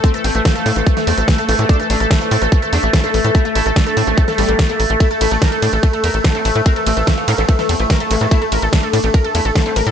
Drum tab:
RD |----------------|----------------|----------------|x-x-x-x-x-x-x-x-|
HH |xxoxxxoxxxoxxxox|xxoxxxoxxxoxxxox|xxoxxxoxxxoxxxox|xxoxxxoxxxoxxxox|
SD |----o----o--o---|----o-------o---|----o----o--o---|----o-------o---|
BD |o---o---o---o---|o---o---o---o---|o---o---o---o---|o---o---o---o---|

RD |x-x-x-x-x-x-x-x-|x-x-x-x-x-x-x-x-|
HH |xxo-xxoxxxoxxxox|xxoxxxoxxxoxxxox|
SD |----o----o--o---|----o-------o---|
BD |o---o---o---o---|o---o---o---o---|